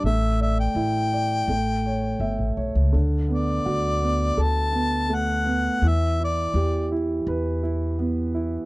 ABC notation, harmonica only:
X:1
M:4/4
L:1/16
Q:1/4=83
K:D
V:1 name="Harmonica"
e2 e g8- g3 z2 | z2 d6 a4 f4 | e2 d4 z8 z2 |]